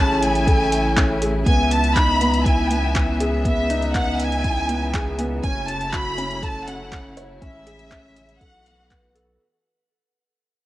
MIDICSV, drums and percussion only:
0, 0, Header, 1, 2, 480
1, 0, Start_track
1, 0, Key_signature, 4, "minor"
1, 0, Tempo, 495868
1, 1421, Time_signature, 4, 2, 24, 8
1, 10315, End_track
2, 0, Start_track
2, 0, Title_t, "Drums"
2, 218, Note_on_c, 9, 42, 66
2, 315, Note_off_c, 9, 42, 0
2, 342, Note_on_c, 9, 42, 30
2, 439, Note_off_c, 9, 42, 0
2, 456, Note_on_c, 9, 36, 112
2, 461, Note_on_c, 9, 42, 43
2, 553, Note_off_c, 9, 36, 0
2, 558, Note_off_c, 9, 42, 0
2, 699, Note_on_c, 9, 42, 71
2, 796, Note_off_c, 9, 42, 0
2, 937, Note_on_c, 9, 36, 109
2, 940, Note_on_c, 9, 39, 94
2, 940, Note_on_c, 9, 42, 43
2, 1033, Note_off_c, 9, 36, 0
2, 1037, Note_off_c, 9, 39, 0
2, 1037, Note_off_c, 9, 42, 0
2, 1180, Note_on_c, 9, 42, 65
2, 1277, Note_off_c, 9, 42, 0
2, 1417, Note_on_c, 9, 36, 106
2, 1419, Note_on_c, 9, 42, 44
2, 1514, Note_off_c, 9, 36, 0
2, 1516, Note_off_c, 9, 42, 0
2, 1659, Note_on_c, 9, 42, 67
2, 1756, Note_off_c, 9, 42, 0
2, 1780, Note_on_c, 9, 42, 29
2, 1877, Note_off_c, 9, 42, 0
2, 1897, Note_on_c, 9, 36, 95
2, 1902, Note_on_c, 9, 39, 94
2, 1902, Note_on_c, 9, 42, 46
2, 1994, Note_off_c, 9, 36, 0
2, 1999, Note_off_c, 9, 39, 0
2, 1999, Note_off_c, 9, 42, 0
2, 2140, Note_on_c, 9, 42, 62
2, 2237, Note_off_c, 9, 42, 0
2, 2262, Note_on_c, 9, 42, 31
2, 2359, Note_off_c, 9, 42, 0
2, 2378, Note_on_c, 9, 36, 103
2, 2382, Note_on_c, 9, 42, 44
2, 2474, Note_off_c, 9, 36, 0
2, 2479, Note_off_c, 9, 42, 0
2, 2621, Note_on_c, 9, 42, 64
2, 2718, Note_off_c, 9, 42, 0
2, 2859, Note_on_c, 9, 36, 108
2, 2861, Note_on_c, 9, 39, 86
2, 2861, Note_on_c, 9, 42, 40
2, 2955, Note_off_c, 9, 36, 0
2, 2958, Note_off_c, 9, 39, 0
2, 2958, Note_off_c, 9, 42, 0
2, 3101, Note_on_c, 9, 42, 60
2, 3198, Note_off_c, 9, 42, 0
2, 3339, Note_on_c, 9, 36, 106
2, 3342, Note_on_c, 9, 42, 43
2, 3436, Note_off_c, 9, 36, 0
2, 3439, Note_off_c, 9, 42, 0
2, 3581, Note_on_c, 9, 42, 61
2, 3678, Note_off_c, 9, 42, 0
2, 3701, Note_on_c, 9, 42, 28
2, 3798, Note_off_c, 9, 42, 0
2, 3819, Note_on_c, 9, 36, 103
2, 3822, Note_on_c, 9, 39, 87
2, 3822, Note_on_c, 9, 42, 42
2, 3916, Note_off_c, 9, 36, 0
2, 3918, Note_off_c, 9, 39, 0
2, 3918, Note_off_c, 9, 42, 0
2, 4061, Note_on_c, 9, 42, 57
2, 4157, Note_off_c, 9, 42, 0
2, 4182, Note_on_c, 9, 42, 27
2, 4278, Note_off_c, 9, 42, 0
2, 4299, Note_on_c, 9, 36, 98
2, 4299, Note_on_c, 9, 42, 39
2, 4396, Note_off_c, 9, 36, 0
2, 4396, Note_off_c, 9, 42, 0
2, 4539, Note_on_c, 9, 42, 63
2, 4636, Note_off_c, 9, 42, 0
2, 4780, Note_on_c, 9, 36, 105
2, 4783, Note_on_c, 9, 39, 87
2, 4783, Note_on_c, 9, 42, 39
2, 4876, Note_off_c, 9, 36, 0
2, 4880, Note_off_c, 9, 39, 0
2, 4880, Note_off_c, 9, 42, 0
2, 5020, Note_on_c, 9, 42, 63
2, 5117, Note_off_c, 9, 42, 0
2, 5260, Note_on_c, 9, 36, 103
2, 5260, Note_on_c, 9, 42, 40
2, 5357, Note_off_c, 9, 36, 0
2, 5357, Note_off_c, 9, 42, 0
2, 5500, Note_on_c, 9, 42, 62
2, 5597, Note_off_c, 9, 42, 0
2, 5621, Note_on_c, 9, 42, 27
2, 5718, Note_off_c, 9, 42, 0
2, 5740, Note_on_c, 9, 36, 94
2, 5742, Note_on_c, 9, 39, 92
2, 5742, Note_on_c, 9, 42, 42
2, 5837, Note_off_c, 9, 36, 0
2, 5838, Note_off_c, 9, 39, 0
2, 5838, Note_off_c, 9, 42, 0
2, 5984, Note_on_c, 9, 42, 57
2, 6080, Note_off_c, 9, 42, 0
2, 6106, Note_on_c, 9, 42, 27
2, 6203, Note_off_c, 9, 42, 0
2, 6220, Note_on_c, 9, 36, 101
2, 6222, Note_on_c, 9, 42, 41
2, 6317, Note_off_c, 9, 36, 0
2, 6319, Note_off_c, 9, 42, 0
2, 6462, Note_on_c, 9, 42, 63
2, 6559, Note_off_c, 9, 42, 0
2, 6700, Note_on_c, 9, 36, 101
2, 6703, Note_on_c, 9, 39, 91
2, 6703, Note_on_c, 9, 42, 38
2, 6797, Note_off_c, 9, 36, 0
2, 6800, Note_off_c, 9, 39, 0
2, 6800, Note_off_c, 9, 42, 0
2, 6941, Note_on_c, 9, 42, 62
2, 7038, Note_off_c, 9, 42, 0
2, 7181, Note_on_c, 9, 36, 102
2, 7182, Note_on_c, 9, 42, 41
2, 7278, Note_off_c, 9, 36, 0
2, 7279, Note_off_c, 9, 42, 0
2, 7423, Note_on_c, 9, 42, 65
2, 7520, Note_off_c, 9, 42, 0
2, 7542, Note_on_c, 9, 42, 28
2, 7639, Note_off_c, 9, 42, 0
2, 7660, Note_on_c, 9, 36, 104
2, 7661, Note_on_c, 9, 39, 103
2, 7661, Note_on_c, 9, 42, 43
2, 7757, Note_off_c, 9, 36, 0
2, 7758, Note_off_c, 9, 39, 0
2, 7758, Note_off_c, 9, 42, 0
2, 7903, Note_on_c, 9, 42, 63
2, 8000, Note_off_c, 9, 42, 0
2, 8022, Note_on_c, 9, 42, 30
2, 8119, Note_off_c, 9, 42, 0
2, 8139, Note_on_c, 9, 36, 100
2, 8141, Note_on_c, 9, 42, 41
2, 8236, Note_off_c, 9, 36, 0
2, 8238, Note_off_c, 9, 42, 0
2, 8383, Note_on_c, 9, 42, 63
2, 8480, Note_off_c, 9, 42, 0
2, 8620, Note_on_c, 9, 36, 101
2, 8623, Note_on_c, 9, 39, 92
2, 8623, Note_on_c, 9, 42, 44
2, 8717, Note_off_c, 9, 36, 0
2, 8720, Note_off_c, 9, 39, 0
2, 8720, Note_off_c, 9, 42, 0
2, 8862, Note_on_c, 9, 42, 63
2, 8959, Note_off_c, 9, 42, 0
2, 10315, End_track
0, 0, End_of_file